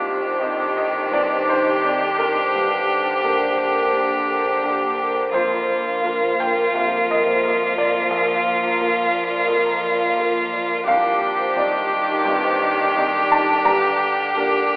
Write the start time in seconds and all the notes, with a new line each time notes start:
Already playing: C2 D#3 C4 D4 G4 C5
0.05 G4
0.23 C5
0.40 C4 D#4 D#5
0.59 G4
0.77 D#4 D#5
0.94 D#4
1.11 G2 C4 D5
1.31 C5
1.48 D#4 C5
1.66 G4
1.84 C4 D#4 D5
2.18 D#4 A#4
2.53 G2 D3 A#3 D4 G4
2.70 D5
2.88 D5
3.05 G5
3.23 A#3 D4 G4 A#4
3.40 D5
3.57 A#4
3.74 A#4
3.92 D3 G4
4.11 G5
4.28 A#4
4.45 D5
4.63 A#3 D4 G4 A#4
4.98 A#4
5.32 F2 F3 A#3 F4 C5
5.51 C5
5.70 C5
5.87 F5
6.03 A#3 F4 A#4
6.21 C5
6.40 G5
6.57 A#4
6.74 C3 F4 F5
6.92 F5
7.10 A#4 D#5
7.27 C5
7.44 A#3 F4 A#4
7.77 A#4 D5
8.10 A#1 A#3 A#4
8.29 F5
8.45 F5
8.62 A#5
8.79 A#3 F4 A#4
8.96 F5
9.13 D5
9.30 D5
9.47 F2 A#4
9.65 A#5
9.83 D5
10.00 F5
10.17 A#3 F4 A#4
10.52 D5
10.86 C2 D#3 C4 D4 G4 D5 F5
11.04 G4
11.21 G4
11.38 C5
11.55 D#3 G3 C4 D#4 D5
11.72 G4
11.91 D#4
12.09 D#4
12.25 G2 C4 G5
12.43 C5
12.61 D#4
12.78 G4
12.96 G3 C4 D#4 D5
13.30 D#4 A5
13.64 G2 D3 D4 G4 A#5
13.82 D5
14.17 G5
14.35 A#3 D4 G4 A#4
14.53 D5
14.70 A#4